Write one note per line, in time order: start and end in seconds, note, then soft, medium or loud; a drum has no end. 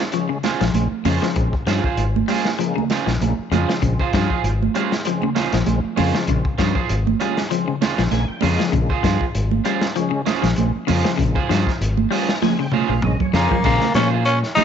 0.12 0.38 C#3 medium
0.12 0.27 F3 medium
0.12 0.38 G#3 medium
0.12 0.38 C#4 medium
0.12 closed hi-hat medium
0.12 high conga soft
0.29 0.54 C#3 medium
0.43 0.63 C#4 medium
0.43 0.64 F4 medium
0.43 0.64 G#4 medium
0.43 0.64 C5 medium
0.43 snare medium
0.43 closed hi-hat soft
0.43 high conga medium
0.61 0.72 A#1 medium
0.61 0.85 F3 medium
0.61 snare medium
0.61 closed hi-hat medium
0.74 0.87 A#1 medium
0.74 0.88 C#3 medium
0.74 0.88 G#3 medium
0.74 0.88 C4 medium
0.74 closed hi-hat medium
0.74 high conga medium
0.92 muted fingered electric bass stroke soft
1.04 1.18 F2 medium
1.04 1.55 C#3 medium
1.04 1.19 C#3 medium
1.04 1.55 G#3 medium
1.04 1.55 C4 medium
1.04 1.25 C#4 medium
1.04 1.25 F4 medium
1.04 1.25 G#4 medium
1.04 1.26 C5 medium
1.04 open hi-hat medium
1.04 high conga medium
1.22 1.33 F3 medium
1.22 snare medium
1.36 1.49 A#1 medium
1.36 muted clean electric guitar stroke medium
1.36 kick medium
1.36 closed hi-hat medium
1.36 high conga soft
1.53 kick medium
1.66 1.80 G2 medium
1.66 1.91 F3 medium
1.66 1.84 C#4 medium
1.66 1.84 F4 medium
1.66 1.84 G#4 medium
1.66 1.84 C5 medium
1.66 snare medium
1.66 closed hi-hat soft
1.84 2.02 F4 soft
1.84 2.02 G#4 soft
1.84 2.02 C5 soft
1.84 muted fingered electric bass stroke soft
1.84 kick medium
1.97 2.21 G#1 medium
1.97 closed hi-hat medium
1.97 high conga soft
2.16 high conga medium
2.28 2.53 G3 medium
2.28 2.48 C#4 medium
2.28 2.49 F4 medium
2.28 2.49 G#4 medium
2.28 2.49 C5 medium
2.28 open hi-hat medium
2.28 high conga medium
2.45 snare medium
2.59 2.84 C#3 medium
2.59 2.72 F3 medium
2.59 2.85 G#3 medium
2.59 2.84 A#3 medium
2.59 closed hi-hat medium
2.59 high conga soft
2.76 3.00 C#3 medium
2.76 high conga medium
2.90 3.10 C#4 medium
2.90 3.10 F4 medium
2.90 3.10 G#4 medium
2.90 3.10 C5 medium
2.90 snare medium
2.90 closed hi-hat soft
2.90 high conga medium
3.06 3.18 A#1 medium
3.06 3.31 F3 medium
3.06 snare medium
3.21 3.34 A#1 medium
3.21 3.34 C#3 medium
3.21 3.34 G#3 medium
3.21 3.34 A#3 medium
3.21 closed hi-hat medium
3.21 high conga medium
3.39 muted fingered electric bass stroke soft
3.51 3.64 F2 medium
3.51 3.65 C#3 medium
3.51 4.02 C#3 medium
3.51 4.02 G#3 medium
3.51 4.02 C4 medium
3.51 3.71 C#4 medium
3.51 3.72 F4 medium
3.51 3.72 G#4 medium
3.51 3.72 C5 medium
3.51 closed hi-hat soft
3.51 high conga medium
3.69 3.80 F3 medium
3.69 snare medium
3.82 3.95 A#1 medium
3.82 4.06 C#3 medium
3.82 kick medium
3.82 closed hi-hat medium
3.82 high conga soft
4.00 4.13 F4 soft
4.00 4.14 G#4 soft
4.00 4.13 C5 medium
4.00 kick medium
4.13 4.26 G2 medium
4.13 4.38 F3 medium
4.13 4.30 C#4 medium
4.13 4.30 F4 medium
4.13 4.29 G#4 medium
4.13 4.28 C5 medium
4.13 kick medium
4.13 snare medium
4.13 closed hi-hat soft
4.29 4.48 F4 soft
4.29 4.47 G#4 soft
4.29 4.47 C5 medium
4.29 muted fingered electric bass stroke soft
4.29 kick medium
4.44 4.67 G#1 medium
4.44 closed hi-hat medium
4.44 high conga soft
4.62 high conga medium
4.75 5.00 G3 medium
4.75 4.94 C#4 medium
4.75 4.94 F4 medium
4.75 4.94 G#4 medium
4.75 4.95 C5 medium
4.75 closed hi-hat soft
4.92 snare medium
5.05 5.30 C#3 medium
5.05 5.20 F3 medium
5.05 5.30 G#3 medium
5.05 5.30 C4 medium
5.05 closed hi-hat medium
5.05 high conga soft
5.22 5.47 C#3 medium
5.22 high conga medium
5.35 5.55 C#4 medium
5.35 5.55 F4 medium
5.35 5.55 G#4 medium
5.35 5.56 C5 medium
5.35 snare medium
5.35 closed hi-hat soft
5.35 high conga medium
5.53 5.64 A#1 medium
5.53 5.78 F3 medium
5.53 snare medium
5.53 closed hi-hat medium
5.66 5.80 A#1 medium
5.66 5.80 C#3 medium
5.66 5.80 G#3 medium
5.66 5.80 C4 medium
5.66 closed hi-hat medium
5.66 high conga medium
5.84 muted fingered electric bass stroke soft
5.96 6.11 F2 medium
5.96 6.47 C#3 medium
5.96 6.11 C#3 medium
5.96 6.47 G#3 medium
5.96 6.47 C4 medium
5.96 6.16 C#4 medium
5.96 6.17 F4 medium
5.96 6.17 G#4 medium
5.96 6.17 C5 medium
5.96 open hi-hat medium
5.96 high conga medium
6.15 6.26 F3 medium
6.15 snare medium
6.28 6.41 A#1 loud
6.28 6.53 C#3 medium
6.28 kick medium
6.28 closed hi-hat medium
6.28 high conga soft
6.45 kick medium
6.58 6.72 G2 medium
6.58 6.83 F3 medium
6.58 6.75 C#4 medium
6.58 6.74 F4 medium
6.58 6.74 G#4 medium
6.58 6.74 C5 medium
6.58 kick medium
6.58 snare medium
6.58 closed hi-hat soft
6.75 6.93 F4 soft
6.75 6.93 G#4 soft
6.75 6.93 C5 soft
6.75 muted fingered electric bass stroke soft
6.75 kick medium
6.89 7.14 G#1 medium
6.89 closed hi-hat medium
6.89 high conga soft
7.07 high conga medium
7.20 7.45 G3 medium
7.20 7.40 C#4 medium
7.20 7.40 F4 medium
7.20 7.40 G#4 medium
7.20 muted clean electric guitar stroke medium
7.20 closed hi-hat soft
7.20 high conga medium
7.37 snare medium
7.50 7.76 C#3 medium
7.50 7.64 F3 medium
7.50 7.76 G#3 medium
7.50 7.76 C4 medium
7.50 closed hi-hat medium
7.50 high conga soft
7.68 7.92 C#3 medium
7.81 8.01 C#4 medium
7.81 8.02 F4 medium
7.81 8.02 G#4 medium
7.81 8.02 C5 medium
7.81 snare medium
7.81 closed hi-hat soft
7.81 high conga medium
7.98 8.09 A#1 medium
7.98 8.23 F3 medium
7.98 snare medium
8.11 8.25 A#1 medium
8.11 8.25 C#3 medium
8.11 8.25 G#3 medium
8.11 8.25 A#3 medium
8.11 8.28 G#5 medium
8.11 snare soft
8.11 closed hi-hat medium
8.11 high conga medium
8.28 8.42 G5 medium
8.28 muted fingered electric bass stroke soft
8.41 8.56 F2 medium
8.41 8.93 C#3 medium
8.41 8.56 C#3 medium
8.41 8.93 G#3 medium
8.41 8.93 A#3 medium
8.41 8.62 C#4 medium
8.41 8.63 F4 medium
8.41 8.63 G#4 medium
8.41 8.63 C5 medium
8.41 8.71 D#5 medium
8.41 open hi-hat medium
8.41 high conga medium
8.59 8.71 F3 medium
8.59 snare medium
8.72 8.87 A#1 loud
8.72 8.97 C#3 medium
8.72 kick medium
8.72 closed hi-hat medium
8.72 high conga soft
8.90 9.03 F4 soft
8.90 9.03 G#4 soft
8.90 9.03 C5 medium
8.90 kick medium
9.03 9.17 G2 medium
9.03 9.28 F3 medium
9.03 9.24 F4 medium
9.03 9.24 G#4 medium
9.03 9.24 C5 medium
9.03 kick medium
9.03 snare medium
9.03 closed hi-hat soft
9.21 muted fingered electric bass stroke soft
9.21 kick medium
9.35 9.59 G#1 medium
9.35 closed hi-hat medium
9.35 high conga soft
9.51 high conga medium
9.64 9.90 G3 medium
9.64 9.85 C#4 medium
9.64 9.85 F4 medium
9.64 9.86 G#4 medium
9.64 9.86 C5 medium
9.64 closed hi-hat soft
9.81 snare medium
9.96 10.22 C#3 medium
9.96 10.10 F3 medium
9.96 10.22 G#3 medium
9.96 10.22 C#4 loud
9.96 closed hi-hat medium
9.96 high conga soft
10.11 10.36 C#3 medium
10.26 10.46 C#4 medium
10.26 10.47 F4 medium
10.26 10.47 G#4 medium
10.26 10.47 C5 medium
10.26 snare medium
10.26 closed hi-hat soft
10.26 high conga medium
10.42 10.55 A#1 medium
10.42 10.68 F3 medium
10.42 snare medium
10.42 closed hi-hat medium
10.56 10.71 A#1 medium
10.56 10.72 C#3 medium
10.56 10.72 G#3 medium
10.56 10.72 C4 medium
10.56 closed hi-hat medium
10.56 high conga medium
10.76 muted fingered electric bass stroke soft
10.87 11.02 F2 loud
10.87 11.01 C#3 medium
10.87 11.39 C#3 medium
10.87 11.39 G#3 medium
10.87 11.39 A#3 medium
10.87 11.08 C#4 medium
10.87 11.08 F4 medium
10.87 11.09 G#4 medium
10.87 11.09 C5 medium
10.87 open hi-hat medium
10.87 high conga medium
11.04 11.16 F3 medium
11.04 snare medium
11.18 11.33 A#1 loud
11.18 11.43 C#3 medium
11.18 kick medium
11.18 closed hi-hat medium
11.18 high conga soft
11.35 11.48 F4 soft
11.35 11.49 G#4 soft
11.35 11.49 C5 medium
11.35 kick medium
11.49 11.63 G2 medium
11.49 11.74 F3 medium
11.49 11.70 C#4 medium
11.49 11.70 F4 medium
11.49 11.70 G#4 medium
11.49 11.70 C5 medium
11.49 snare medium
11.49 closed hi-hat medium
11.66 muted fingered electric bass stroke soft
11.66 kick medium
11.66 snare soft
11.81 12.05 G#1 medium
11.81 closed hi-hat medium
11.81 high conga soft
11.97 high conga medium
12.10 12.36 G3 medium
12.10 12.31 C#4 medium
12.10 12.31 F4 medium
12.10 12.32 G#4 medium
12.10 12.32 C5 medium
12.10 12.40 A#5 medium
12.10 open hi-hat medium
12.29 snare medium
12.42 12.67 C#3 medium
12.42 12.56 F3 medium
12.42 12.67 G#3 medium
12.42 12.67 C4 medium
12.42 12.58 G#5 medium
12.42 snare soft
12.42 high conga loud
12.59 12.84 C#3 medium
12.59 12.73 G5 medium
12.72 12.93 C#4 medium
12.72 12.93 F4 medium
12.72 12.93 G#4 medium
12.72 12.93 C5 medium
12.72 13.02 F5 medium
12.72 mid tom medium
12.72 high conga medium
12.89 13.00 A#1 medium
12.89 13.14 F3 medium
12.89 high conga medium
13.02 13.17 A#1 medium
13.02 13.18 C#3 medium
13.02 13.18 G#3 medium
13.02 13.18 C#4 medium
13.02 13.20 D#5 medium
13.02 mid tom medium
13.02 low conga medium
13.20 13.34 C#5 medium
13.20 muted fingered electric bass stroke soft
13.20 kick medium
13.20 low conga medium
13.33 13.47 F2 medium
13.33 13.48 C#3 medium
13.33 13.65 C#3 medium
13.33 13.64 G#3 medium
13.33 13.64 A#3 medium
13.33 13.66 A#3 medium
13.33 13.64 A#3 medium
13.33 13.54 C#4 medium
13.33 13.54 F4 medium
13.33 13.54 G#4 medium
13.33 13.55 C5 medium
13.33 13.64 C#5 medium
13.33 snare medium
13.51 13.63 F3 medium
13.51 kick medium
13.51 low conga medium
13.64 13.78 A#1 medium
13.64 14.03 C#3 medium
13.64 13.90 C#3 medium
13.64 14.03 G#3 medium
13.64 13.94 A#3 medium
13.64 14.03 C4 medium
13.64 13.84 C#4 medium
13.64 13.85 F4 medium
13.64 13.85 G#4 medium
13.64 13.85 C5 medium
13.64 kick medium
13.64 crash medium
13.81 snare soft
13.81 high conga medium
13.94 14.43 A#2 medium
13.94 14.21 F3 medium
13.94 14.09 C#4 medium
13.94 14.13 C#4 medium
13.94 14.11 C#4 medium
13.94 14.12 F4 medium
13.94 14.11 G#4 medium
13.94 14.11 C5 medium
13.94 snare medium
13.94 closed hi-hat soft
13.94 high conga loud
14.12 14.30 F4 soft
14.12 14.30 G#4 soft
14.12 14.30 C5 medium
14.25 14.39 C#4 medium
14.25 14.41 C#4 medium
14.25 closed hi-hat medium
14.43 snare soft
14.55 14.64 C#3 medium
14.55 14.64 G3 medium
14.55 14.64 G#3 medium
14.55 14.64 C4 medium
14.55 14.64 C#4 medium
14.55 14.64 D#4 loud
14.55 14.64 F4 medium
14.55 14.64 G#4 medium
14.55 14.64 C5 medium
14.55 muted fingered electric bass stroke soft
14.55 open hi-hat medium
14.55 high conga medium
14.55 low conga medium